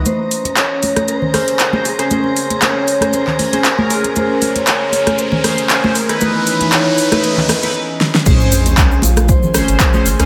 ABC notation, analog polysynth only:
X:1
M:4/4
L:1/16
Q:"Swing 16ths" 1/4=117
K:Bbm
V:1 name="Analog polysynth"
z8 z2 [DAc]3 [DAc] z [DAc]- | [DAc]4- [DAc] [DAc]2 [DAc]2 z2 [DAc] z [DAB]3- | [DAB]8- [DAB]2 [DAc]3 [DAc] z [E_F_c]- | [E_F_c]4- [EFc] [EFc]2 [EFc]2 z2 [EFc] z4 |
[DAc]6 z4 [DAc]3 [DAc] z [DAc] |]